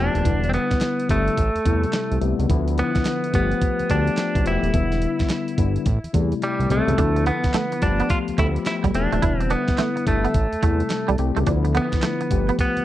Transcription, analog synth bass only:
0.15 D#1
0.25 E1
1.09 G1
1.38 A1
1.56 E2
1.66 E2
2.12 C2
2.22 C2
2.39 C#2
2.50 D2
3.34 G1
3.79 D2
3.90 D2
4.35 B1
4.45 E1
4.63 D#1
4.74 E1
5.58 G1
5.86 A1
6.04 E2
6.14 E2
6.60 C2
6.70 C2
6.88 C#2
6.98 D2
7.82 G1
8.28 D2
8.38 D2
8.84 B1
8.95 E1
9.12 D#1
9.22 E1
10.07 G1
10.34 A1
10.53 E2
10.63 E2
11.09 C2
11.19 C2
11.37 C#2
11.47 D2
12.31 G1
12.77 D2

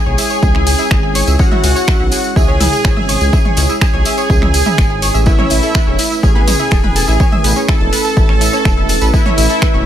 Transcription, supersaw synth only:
Already playing: G#4
1.40 F#4
2.36 G#4
3.81 G#4
5.26 E4
6.23 G#4
7.68 A4
9.14 E4

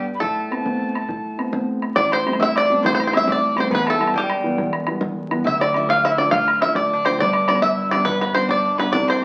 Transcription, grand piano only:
Already playing: G2
0.21 A2
0.51 A3 B3 C4
0.65 A3 B3 C4
1.09 A2
1.38 A3 B3 C4
1.52 A3 B3 C4
1.97 A1 A2
2.26 G3 A3 C4
2.70 G3 A3 C4
2.83 A1 A2
3.13 G3 A3 C4
3.56 G3 A3 C4
3.70 E1 E2
3.98 E3 G3 B3
4.43 E3 G3 B3
4.58 E1 E2
4.87 E3 G3 B3
5.30 E3 G3 B3
5.44 D1 D2
5.74 F3 A3 D4
6.17 F3 A3 D4
6.31 D1 D2
6.61 F3 A3 D4
7.05 F3 A3 D4
7.20 G1 G2
7.50 G3 B3 D4
7.93 G3 B3 D4
8.06 G1 G2
8.35 G3 B3 D4
8.79 G3 B3 D4
8.94 C2 C3

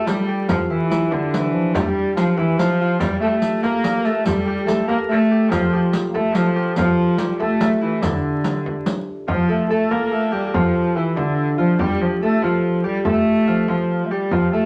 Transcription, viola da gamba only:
0.08 G3
0.49 F3
0.72 E3
1.12 D3
1.33 E3
1.73 G3
1.81 A3
1.88 G3
2.16 F3
2.37 E3
2.58 F3
3.00 G3
3.20 A3
3.27 G3
3.34 A3
3.63 A#3
4.05 A3
4.25 G3
4.89 A#3
5.11 A3
5.52 F3
6.14 A3
6.35 F3
6.78 F3
7.40 A3
7.83 E3
8.03 D3
9.28 F3
9.70 A3
9.91 A#3
10.54 F3
10.96 E3
11.17 D3
11.59 F3
11.79 G3
12.02 F3
12.22 A3
12.43 F3
12.85 G3
13.05 A3
13.69 F3
14.11 G3
14.32 F3
14.52 A3

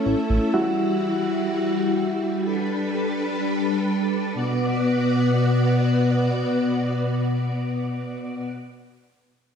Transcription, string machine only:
Already playing: A3 C#4 E4
0.54 E3 G3 F#4
2.44 G3 D4 A4 B4
4.35 B2 B3 F#4 D5

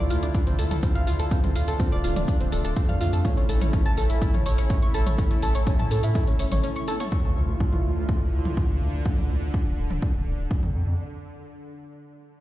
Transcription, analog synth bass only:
0.10 D2
0.22 D2
0.47 D2
0.59 D2
0.71 D2
0.95 D2
1.07 D2
1.19 D2
1.43 D2
1.55 D2
1.68 D2
1.92 D1
2.04 D1
2.16 D1
2.40 D1
2.52 D1
2.65 D1
2.89 F2
3.01 F2
3.13 F2
3.37 A1
3.49 A1
3.61 A1
3.85 A1
3.97 A1
4.10 A1
4.34 A1
4.46 A1
4.58 A1
4.82 A1
4.94 A1
5.06 A1
5.31 A1
5.43 A1
5.55 A1
5.79 A2
5.91 A2
6.03 A2
6.28 A1
6.39 G1
6.52 A1
7.24 D2
7.36 D2
7.48 D2
7.73 D2
7.84 D2
7.97 D2
8.21 D2
8.33 D2
8.45 D2
8.69 D2
8.81 D2
8.94 D2
9.18 D2
9.30 D2
9.42 D2
9.66 D1
9.78 D1
9.90 D1
10.15 D1
10.26 D1
10.39 D1
10.63 F2
10.75 F2
10.87 F2

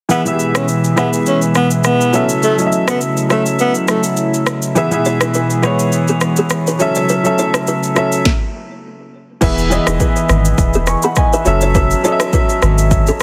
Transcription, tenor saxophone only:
0.10 B3
0.56 C#4
0.98 B3
1.27 C#4
1.56 B3
1.85 B3
2.43 A3
2.89 B3
3.31 A3
3.60 B3
3.90 A3

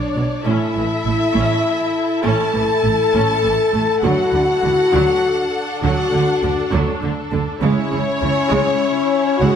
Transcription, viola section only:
Already playing: D4
0.17 F#3
0.46 C#4 E4
0.76 E3
1.06 A3
1.35 C#4
2.24 C#4
2.54 E3
2.85 A3
3.14 C#4
3.43 E3
3.73 A3
4.03 F#3
4.33 D3
4.63 D3
4.93 F#3 D4
5.83 F#3
6.13 D3
6.43 D3
6.72 F#3
7.02 D3
7.32 D3
7.61 G#3 E4
7.91 C#3
8.21 E3
8.51 G#3
9.42 G#3

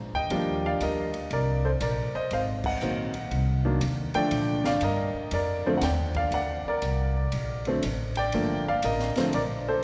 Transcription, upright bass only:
0.13 D2
0.30 D#2
0.81 D2
1.31 C2
1.81 A#1
2.14 muted upright bass stroke
2.31 G#1
2.81 A#1
3.31 C2
3.81 D#2
4.15 muted upright bass stroke
4.32 A#2
4.82 G2
5.14 muted upright bass stroke
5.32 F2
5.82 D#2
6.31 D2
6.65 muted upright bass stroke
6.82 C2
7.33 A#1
7.84 A1
8.34 G1
8.84 A1
9.16 muted upright bass stroke
9.33 A#1

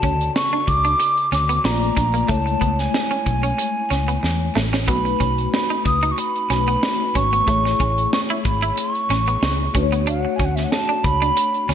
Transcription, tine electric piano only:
Already playing: C#3 F#4 A4 D5
1.64 A3 A#3 F4 D5
2.28 G#3 A3 E4 C#5
4.87 A3 C#4 F#4 B4
4.95 D#4
6.50 A3 D#4 F#4 B4
7.46 A3 E4 G#4 C#5
9.74 A3 D4 F#4 B4
9.83 C#5

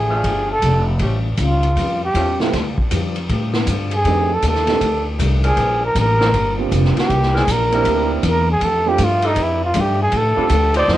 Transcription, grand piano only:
2.41 A3 C4 E4 F4 G4
4.06 A3 C4 D4 D#4 G4
4.68 A3 C4 D4 D#4 G4
6.58 A#3 C4 D4 F4 G4
7.72 A#3 C4 D4 E4 G4
8.86 A3 C4 D4 F4 G4
10.36 A3 C4 D4 F4 G4

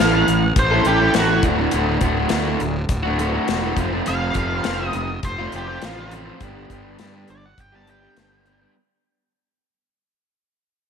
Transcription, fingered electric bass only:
0.00 A1
0.28 A1
0.56 A1
0.86 A1
1.15 A1
1.43 D1
1.73 D1
2.01 D1
2.32 D2
2.61 D1
2.90 D1
3.49 E1
3.77 F1
4.08 F1
4.35 F1
4.66 F1
4.95 F1
5.23 F1
5.53 F1
5.83 A1
6.41 G1
6.70 G1
7.00 G2
7.30 G1
7.58 G1
8.17 G1

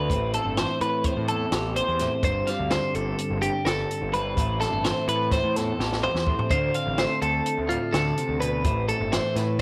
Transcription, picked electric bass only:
Already playing: D2
0.10 A1
0.45 G1
0.81 A2
1.17 A2
1.52 A1
1.88 E2
2.23 G1
2.59 D2
2.95 G1
3.30 G1
3.66 G1
4.02 G1
4.37 A1
4.72 G1
5.08 A2
5.44 A2
5.79 A1
6.15 E2
6.50 D2
6.87 A1
7.22 D2
7.58 D2
7.93 D2
8.29 D2
8.64 A1
9.00 G1
9.36 A2

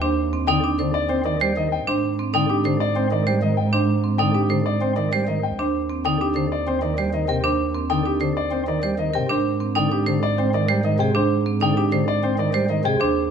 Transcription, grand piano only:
0.01 C5
0.47 G5
0.94 D5
1.09 C5
1.26 D5
1.57 D#5
1.72 G5
1.88 C5
2.35 G5
2.50 G4
2.80 D5
2.96 C5
3.12 D5
3.42 D#5
3.57 G5
3.73 C5
4.18 G5
4.34 G4
4.66 D5
4.82 C5
4.96 D5
5.28 D#5
5.43 G5
5.59 C5
6.05 G5
6.21 G4
6.52 D5
6.68 C5
6.82 D5
7.14 D#5
7.28 G5
7.44 C5
7.90 G5
8.06 G4
8.37 D5
8.52 C5
8.68 D5
8.99 D#5
9.15 G5
9.30 C5
9.76 G5
9.92 G4
10.23 D5
10.38 C5
10.54 D5
10.85 D#5
10.99 G5
11.16 C5
11.62 G5
11.78 G4
12.08 D5
12.24 C5
12.39 D5
12.70 D#5
12.85 G5
13.00 C5

